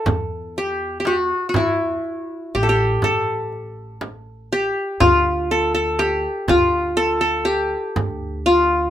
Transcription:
Already playing: E4 A4
0.06 E2, frame drum, darbuka dum
0.56 G4, darbuka ka
1.00 G4
1.05 F#4, darbuka tek, frame drum
1.49 F#4
1.54 E2 E4, frame drum, darbuka dum
2.04 darbuka ka
2.55 A1 G4
2.63 A4
2.69 G4
3.02 A1 A4, frame drum, darbuka dum
3.52 darbuka ka
4.01 darbuka tek, frame drum
4.53 G4
5.00 D2 F4, frame drum, darbuka dum
5.50 A4, darbuka ka
5.75 A4
5.99 G4, darbuka tek, frame drum
6.48 D2 F4, darbuka dum, frame drum
6.97 A4
7.21 A4
7.45 G4
7.96 D2, frame drum, darbuka dum
8.46 F4

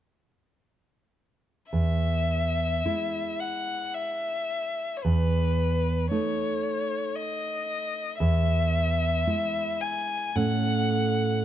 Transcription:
1.71 E2 E5
2.85 G#3 E4
3.40 F#5
3.94 E5
4.97 C#5
5.03 E2 B4
6.11 A3 D#4 C#5
7.16 D#5
8.18 E2 E5
9.27 G#3 E4
9.81 G#5
10.36 A2 A3 C#4 F#5

